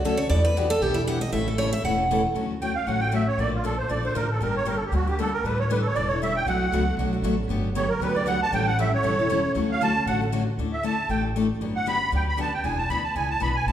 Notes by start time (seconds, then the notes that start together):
0.04 D2 D3 F#3 A3 C#4 F#4 A4
0.17 C#5
0.30 E2 E3 G3 B3 D4 E4 G4 B4 D5
0.45 B4
0.56 E3 G3 B3 D4 E4 F#4 G4 B4
0.70 A4
0.80 B1 E3 G3 B3 D4 E4 G4 B4
0.94 E4
1.07 E3 G3 B3 D4 E4 G4 B4 F#5
1.21 D#5
1.32 A1 C#3 E3 A3 C#4 E4 A4 E5
1.48 A4
1.58 C#3 E3 A3 C#4 E4 A4 C#5
1.73 E5
1.83 E1 C#3 E3 A3 C#4 E4 A4 F#5
2.11 C#3 E3 A3 C#4 E4 A4
2.35 D2 D3 F#3 A3 C#4 F#4
2.61 D3 F#3 A3 C#4 F#4 G5
2.75 F5
2.86 A1 D3 F#3 A3 C#4 F#4 F#5
3.00 A3 C#4 F#4 G5
3.11 D3 F#3 A3 C#4 F#4 E5
3.28 C#5
3.38 A#1 D3 F3 A#3 D4 A4 D5
3.54 F4
3.64 D3 F3 A#3 D4 A4
3.78 C5
3.88 A#1 D3 F3 A#3 D4 A4 D5
4.03 A#3 D4 A4 C5
4.14 A1 D3 F3 A#3 D4 A4 A#4
4.31 A4
4.41 G1 D3 G3 A#3 D4 G4 A#4
4.57 C#5
4.65 D3 G3 A#3 D4 G4 A#4
4.76 A4
4.86 G4
4.91 D2 D3 G3 A#3 D4 F#4 G4
5.07 A#3 D4 G4
5.19 D3 G3 A#3 D4 G4 A4
5.33 A#4
5.44 A1 D3 G3 D4 E4 A4 B4
5.60 C#5
5.70 D3 G3 D4 E4 A4 B4
5.80 A4
5.87 C#5
5.95 E1 D3 G3 D4 E4 A4 D5
6.08 E4 A4 C#5
6.12 D4
6.22 D3 G3 D4 E4 A4 E5
6.36 G5
6.46 B1 B2 F#3 A3 D4 F#4 B4 F#5
6.71 C#2 B2 F#3 A3 D4 F#4 B4
6.97 B1 B2 F#3 A3 D4 F#4 B4
7.13 A3 D4 F#4
7.22 A1 B2 F#3 A3 D4 F#4 B4
7.48 G1 D3 F#3 B3 D4 G4
7.75 D3 F#3 B3 D4 G4 C#5
7.89 A#4
8.00 D2 D3 F#3 B3 D4 G4 B4
8.15 B3 D4 G4 D5
8.26 D3 F#3 B3 D4 G4 F#5
8.43 A5
8.52 A1 E3 G3 C#4 E4 A4 G5
8.67 F#5
8.79 E3 G3 C#4 E4 A4 E5
8.94 C#5
9.03 E1 E3 G3 C#4 E4 A4
9.19 C#4 E4 A4
9.30 E3 G3 C#4 E4 A4
9.54 D2 D3 F#3 A3 C#4 F#4
9.59 A4
9.71 F5
9.81 D3 F#3 A3 C#4 F#4 A4 A5
10.06 A1 D3 F#3 A3 C#4 F#4 A4 F#5
10.21 A3 C#4 F#4
10.32 D3 F#3 A3 C#4 F#4 A4
10.58 D2 D3 A3 D4 E4 A4
10.72 E5
10.83 D3 A3 D4 E4 A4 A5
11.09 A1 D3 A3 D4 E4 A4 G5
11.36 D3 A3 D4 E4 A4
11.61 G1 D3 F#3 B3 D4 G4
11.76 F#5
11.86 D3 F#3 B3 D4 G4 B5
12.12 D2 D3 F#3 B3 D4 G4
12.16 G5
12.29 B5
12.37 D3 F#3 B3 D4 G4 A5
12.54 G5
12.63 E1 E3 B3 D4 G#4 G#5
12.78 A5
12.89 D2 E3 B3 D4 G#4 B5
13.04 A5
13.15 C#2 E3 B3 D4 G#4 G#5
13.30 A5
13.40 B1 E3 B3 D4 G#4 B5
13.56 G#5
13.66 A1 C#3 E3 A3 C#4 A4 A5